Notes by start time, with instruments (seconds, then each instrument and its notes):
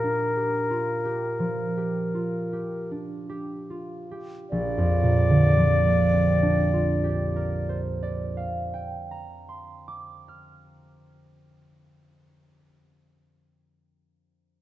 Already playing: harp A#2 F3 F4 G4, flute A#4
0.04 harp D4
0.37 harp G4
0.70 harp F4
1.05 harp G4
1.39 harp F3
1.77 harp G4
2.15 harp F4
2.53 harp G4
2.91 harp D4
3.29 harp G4
3.70 harp F4
4.11 harp G4
4.50 harp A#1, flute D5
4.78 harp F2
5.03 harp A#2
5.29 harp D3
5.56 harp F3
5.85 harp A#3
6.13 harp C4
6.42 harp D4
6.73 harp F4
7.04 harp G4
7.36 harp A#4
7.69 harp C5
8.03 harp D5
8.37 harp F5
8.74 harp G5
9.11 harp A#5
9.49 harp C6
9.88 harp D6
10.28 harp F6